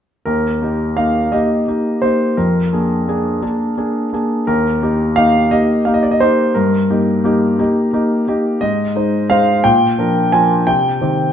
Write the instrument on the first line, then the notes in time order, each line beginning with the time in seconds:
grand piano
0.25 D#2 A#4
0.62 A#3 D#4 G4
0.97 A#3 D#4 G4 F5
1.32 A#3 D#4 G4 D#5
1.68 A#3 D#4 G4
2.02 A#3 D#4 G4 C5
2.37 F2 A#4
2.73 A#3 D4 G#4
3.08 A#3 D4 G#4
3.42 A#3 D4 G#4
3.77 A#3 D4 G#4
4.13 A#3 D4 G#4
4.47 D#2 A#4
4.82 A#3 D#4 G4
5.16 A#3 D#4 G4 F5
5.51 A#3 D#4 G4 D#5
5.85 A#3 D#4 G4 F5
5.94 D#5
6.03 D5
6.11 D#5
6.20 A#3 D#4 G4 C5
6.54 G2 A#4
6.90 A#3 D#4 G4
7.24 A#3 D#4 G4
7.59 A#3 D#4 G4
7.93 A#3 D#4 G4
8.28 A#3 D#4 G4
8.61 G#2 D#5
8.96 G#3 D#4 C5
9.30 G#3 D#4 C5 F5
9.64 A#2 G5
9.99 F3 D4 A#4
10.32 F3 D4 A#4 G#5
10.67 C3 G5
11.01 D#3 C4 G4